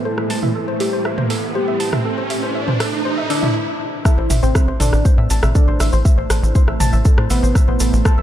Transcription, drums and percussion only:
0.18 cross-stick soft
0.30 open hi-hat loud
0.43 mid tom medium
0.80 open hi-hat loud
1.05 cross-stick soft
1.18 mid tom medium
1.30 open hi-hat loud
1.80 open hi-hat loud
1.93 cross-stick medium
1.93 mid tom medium
2.30 open hi-hat loud
2.68 mid tom medium
2.80 cross-stick medium
2.80 open hi-hat loud
3.30 open hi-hat loud
3.43 mid tom medium
4.05 kick loud
4.05 cross-stick medium
4.05 shaker medium
4.30 mid tom medium
4.30 open hi-hat loud
4.30 shaker medium
4.43 shaker soft
4.55 kick loud
4.55 cross-stick medium
4.55 shaker medium
4.80 mid tom loud
4.80 open hi-hat loud
4.80 shaker medium
4.93 cross-stick medium
4.93 shaker soft
5.05 kick loud
5.05 shaker medium
5.30 open hi-hat loud
5.30 shaker loud
5.43 cross-stick medium
5.43 mid tom medium
5.43 shaker soft
5.55 kick loud
5.55 shaker soft
5.80 cross-stick medium
5.80 open hi-hat loud
5.80 shaker medium
5.92 shaker soft
6.05 kick loud
6.05 shaker medium
6.30 cross-stick medium
6.30 open hi-hat loud
6.30 shaker medium
6.44 shaker soft
6.55 kick loud
6.55 shaker medium
6.68 cross-stick soft
6.80 mid tom medium
6.80 open hi-hat loud
6.80 shaker medium
6.93 shaker soft
7.05 kick loud
7.05 shaker medium
7.18 cross-stick medium
7.30 open hi-hat loud
7.30 shaker medium
7.44 shaker soft
7.55 kick loud
7.55 cross-stick soft
7.55 shaker medium
7.80 open hi-hat loud
7.80 shaker loud
7.93 shaker soft
8.05 kick loud
8.05 cross-stick medium
8.05 shaker medium

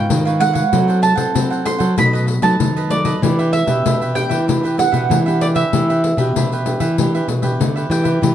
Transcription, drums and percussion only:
0.10 pandeiro medium
0.27 pandeiro soft
0.41 pandeiro medium
0.55 pandeiro medium
0.73 pandeiro medium
0.90 pandeiro soft
1.03 pandeiro medium
1.17 pandeiro medium
1.35 pandeiro medium
1.52 pandeiro soft
1.66 pandeiro medium
1.80 pandeiro medium
1.98 pandeiro medium
2.15 pandeiro soft
2.28 pandeiro medium
2.42 pandeiro medium
2.60 pandeiro medium
2.77 pandeiro soft
2.90 pandeiro medium
3.05 pandeiro medium
3.23 pandeiro medium
3.39 pandeiro soft
3.53 pandeiro medium
3.67 pandeiro medium
3.86 pandeiro medium
4.02 pandeiro soft
4.16 pandeiro medium
4.31 pandeiro medium
4.49 pandeiro medium
4.65 pandeiro soft
4.79 pandeiro medium
4.94 pandeiro medium
5.11 pandeiro medium
5.28 pandeiro soft
5.41 pandeiro medium
5.56 pandeiro medium
5.73 pandeiro medium
5.90 pandeiro soft
6.04 pandeiro medium
6.18 pandeiro medium
6.36 pandeiro medium
6.53 pandeiro soft
6.66 pandeiro medium
6.80 pandeiro medium
6.98 pandeiro medium
7.15 pandeiro soft
7.29 pandeiro medium
7.43 pandeiro medium
7.61 pandeiro medium
7.77 pandeiro soft
7.91 pandeiro medium
8.05 pandeiro medium
8.23 pandeiro medium

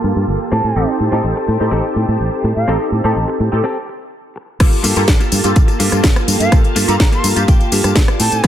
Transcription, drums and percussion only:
4.60 kick loud
4.60 cross-stick medium
4.60 closed hi-hat medium
4.60 crash loud
4.60 tambourine soft
4.73 closed hi-hat soft
4.73 tambourine soft
4.84 open hi-hat loud
4.84 tambourine medium
4.96 closed hi-hat medium
4.96 tambourine soft
5.08 kick loud
5.08 snare loud
5.08 closed hi-hat medium
5.08 tambourine soft
5.20 closed hi-hat soft
5.20 tambourine soft
5.32 open hi-hat loud
5.32 tambourine medium
5.44 closed hi-hat medium
5.44 tambourine soft
5.56 kick loud
5.56 closed hi-hat medium
5.56 tambourine soft
5.68 closed hi-hat soft
5.68 tambourine soft
5.80 open hi-hat loud
5.80 tambourine medium
5.92 cross-stick medium
5.92 closed hi-hat medium
5.92 tambourine soft
6.04 kick loud
6.04 snare loud
6.04 closed hi-hat medium
6.04 tambourine soft
6.16 cross-stick medium
6.16 closed hi-hat soft
6.16 tambourine soft
6.28 open hi-hat loud
6.28 tambourine medium
6.40 closed hi-hat medium
6.40 tambourine soft
6.52 kick loud
6.52 cross-stick medium
6.52 closed hi-hat medium
6.52 tambourine soft
6.64 closed hi-hat soft
6.64 tambourine soft
6.76 open hi-hat loud
6.76 tambourine medium
6.88 closed hi-hat medium
6.88 tambourine soft
7.00 kick loud
7.00 snare loud
7.00 closed hi-hat medium
7.00 tambourine soft
7.12 closed hi-hat soft
7.12 tambourine soft
7.24 open hi-hat loud
7.24 tambourine medium
7.36 closed hi-hat medium
7.36 tambourine soft
7.48 kick loud
7.48 closed hi-hat medium
7.48 tambourine soft
7.61 closed hi-hat soft
7.61 tambourine soft
7.72 open hi-hat loud
7.72 tambourine medium
7.84 cross-stick medium
7.84 closed hi-hat medium
7.84 tambourine soft
7.96 kick loud
7.96 snare loud
7.96 closed hi-hat medium
7.96 tambourine soft
8.08 cross-stick medium
8.08 closed hi-hat soft
8.08 tambourine soft
8.20 open hi-hat loud
8.20 tambourine medium
8.32 closed hi-hat medium
8.32 tambourine soft
8.44 cross-stick medium
8.44 closed hi-hat medium
8.44 tambourine soft

